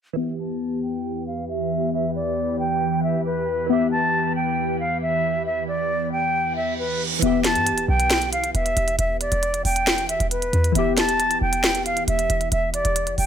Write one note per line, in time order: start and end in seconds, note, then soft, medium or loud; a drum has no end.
0.13 7.18 E2 medium
0.13 3.64 E3 medium
0.13 3.66 E3 medium
0.13 3.65 B3 medium
0.13 7.18 G4 medium
0.13 7.18 B4 medium
0.13 0.35 E5 medium
0.20 3.67 G4 medium
0.39 0.80 A5 medium
0.83 1.24 G5 medium
1.27 1.45 F5 medium
1.49 1.90 E5 medium
1.93 2.11 E5 medium
2.15 2.57 D5 medium
2.59 3.01 G5 medium
3.03 3.21 E5 medium
3.25 3.67 B4 medium
3.66 7.17 E3 medium
3.66 7.19 E3 medium
3.66 7.18 B3 medium
3.66 3.88 E5 medium
3.73 7.20 G4 medium
3.92 4.33 A5 medium
4.36 4.77 G5 medium
4.80 4.98 F5 medium
5.02 5.43 E5 medium
5.46 5.64 E5 medium
5.68 6.09 D5 medium
6.12 6.54 G5 medium
6.34 reverse cymbal medium
6.56 6.74 E5 medium
6.78 7.02 B4 medium
7.19 7.57 E1 loud
7.19 10.70 E3 medium
7.19 10.71 B3 medium
7.19 7.40 E5 medium
7.19 closed hi-hat medium
7.26 10.73 G4 medium
7.44 7.86 A5 loud
7.44 snare medium
7.44 closed hi-hat medium
7.55 7.73 G2 loud
7.55 closed hi-hat medium
7.67 closed hi-hat medium
7.72 7.88 E1 loud
7.78 closed hi-hat medium
7.88 8.52 B1 loud
7.88 8.30 G5 medium
8.00 closed hi-hat medium
8.11 snare loud
8.11 closed hi-hat medium
8.22 closed hi-hat medium
8.33 8.51 F5 medium
8.33 closed hi-hat medium
8.44 closed hi-hat medium
8.55 8.76 E1 loud
8.55 8.96 E5 medium
8.55 closed hi-hat medium
8.66 closed hi-hat medium
8.77 8.98 E1 loud
8.77 closed hi-hat medium
8.88 closed hi-hat medium
8.99 9.31 E1 loud
8.99 9.17 E5 medium
8.99 closed hi-hat medium
9.21 9.62 D5 medium
9.21 closed hi-hat medium
9.32 9.64 E1 loud
9.32 closed hi-hat medium
9.43 closed hi-hat medium
9.54 closed hi-hat medium
9.65 10.18 E1 loud
9.65 10.06 G5 medium
9.65 open hi-hat medium
9.76 closed hi-hat medium
9.87 snare loud
9.87 closed hi-hat medium
9.98 closed hi-hat medium
10.09 10.27 E5 medium
10.09 closed hi-hat medium
10.20 10.52 E1 loud
10.20 closed hi-hat medium
10.31 10.73 B4 medium
10.31 closed hi-hat medium
10.42 closed hi-hat medium
10.53 10.74 E2 loud
10.53 closed hi-hat medium
10.64 closed hi-hat medium
10.72 11.39 E1 loud
10.72 13.26 E3 medium
10.72 13.26 B3 medium
10.72 10.93 E5 medium
10.72 closed hi-hat medium
10.78 13.26 G4 medium
10.97 11.39 A5 medium
10.97 snare medium
10.97 closed hi-hat medium
11.09 closed hi-hat medium
11.20 closed hi-hat medium
11.31 closed hi-hat medium
11.41 12.05 E1 loud
11.41 11.83 G5 medium
11.53 closed hi-hat medium
11.64 snare loud
11.64 closed hi-hat medium
11.75 closed hi-hat medium
11.86 12.04 F5 medium
11.86 closed hi-hat medium
11.97 closed hi-hat medium
12.08 12.29 E1 loud
12.08 12.49 E5 medium
12.08 closed hi-hat medium
12.19 closed hi-hat medium
12.30 12.51 E1 loud
12.30 closed hi-hat medium
12.41 closed hi-hat medium
12.52 12.84 E1 loud
12.52 12.70 E5 medium
12.52 closed hi-hat medium
12.74 13.15 D5 medium
12.74 closed hi-hat medium
12.85 13.08 E1 loud
12.85 closed hi-hat medium
12.96 closed hi-hat medium
13.07 13.17 F1 loud
13.07 closed hi-hat medium
13.18 13.26 E1 loud
13.18 13.26 G5 medium
13.18 open hi-hat medium